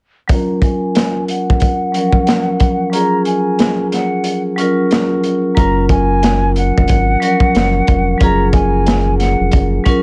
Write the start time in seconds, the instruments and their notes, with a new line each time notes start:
0.28 vibraphone F#3 C#4 F4, flute A#5, kick, closed hi-hat
0.32 vibraphone A#4
0.62 flute G#5, kick, closed hi-hat
0.95 snare, closed hi-hat
1.28 flute F#5, closed hi-hat
1.50 kick
1.60 kick, closed hi-hat
1.92 vibraphone F3 F#3 C#4, closed hi-hat
1.97 vibraphone A#4
2.12 kick
2.27 snare, closed hi-hat
2.60 kick, closed hi-hat
2.90 vibraphone F#3 C#4 F4, flute A#5, closed hi-hat
2.95 vibraphone G#4
3.25 flute G#5, closed hi-hat
3.59 snare, closed hi-hat
3.92 flute F#5, snare, closed hi-hat
4.24 closed hi-hat
4.56 vibraphone F#3 C#4 F4, closed hi-hat
4.61 vibraphone A#4
4.91 snare, closed hi-hat
5.24 closed hi-hat
5.55 analog synth bass F#1, vibraphone F#3 C#4 F4, flute A#5, kick, closed hi-hat
5.60 vibraphone A#4
5.89 flute G#5, kick, closed hi-hat
6.23 snare, closed hi-hat
6.56 flute F#5, closed hi-hat
6.78 analog synth bass F1, kick
6.88 analog synth bass G#1, kick, closed hi-hat
7.20 vibraphone F3 F#3 C#4, closed hi-hat
7.25 vibraphone A#4
7.40 kick
7.55 analog synth bass F#1, snare, closed hi-hat
7.87 analog synth bass F1, kick, closed hi-hat
8.18 analog synth bass F#1, vibraphone F#3 C#4 F4, kick, closed hi-hat
8.23 vibraphone G#4, flute A#5
8.53 flute G#5, kick, closed hi-hat
8.86 snare, closed hi-hat
9.18 flute F#5, snare, closed hi-hat
9.40 analog synth bass F1
9.51 analog synth bass F#1, kick, closed hi-hat
9.84 vibraphone F#3 C#4 F4, kick, closed hi-hat
9.89 vibraphone A#4